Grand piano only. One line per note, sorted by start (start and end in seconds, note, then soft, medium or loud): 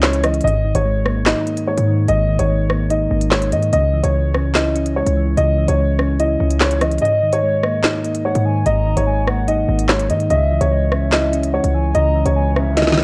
0.03 0.20 C#5 medium
0.24 0.41 D#5 medium
0.44 0.73 D#5 loud
0.75 1.23 C#5 medium
1.26 1.65 D#5 medium
1.68 2.06 C#5 medium
2.08 2.37 D#5 loud
2.39 2.88 C#5 medium
2.91 3.29 D#5 medium
3.32 3.49 C#5 medium
3.52 3.70 D#5 medium
3.73 4.02 D#5 loud
4.04 4.52 C#5 medium
4.55 4.94 D#5 medium
4.96 5.35 C#5 medium
5.37 5.66 D#5 loud
5.68 6.16 C#5 medium
6.19 6.58 D#5 medium
6.60 6.78 C#5 medium
6.81 6.98 D#5 medium
7.01 7.31 D#5 loud
7.33 7.81 C#5 medium
7.84 8.22 D#5 medium
8.25 8.64 C#5 medium
8.66 8.95 D#5 loud
8.97 9.45 C#5 medium
9.48 9.87 D#5 medium
9.89 10.06 C#5 medium
10.10 10.27 D#5 medium
10.30 10.59 D#5 loud
10.61 11.09 C#5 medium
11.12 11.51 D#5 medium
11.54 11.92 C#5 medium
11.95 12.24 D#5 loud
12.26 12.74 C#5 medium
12.77 13.04 D#5 medium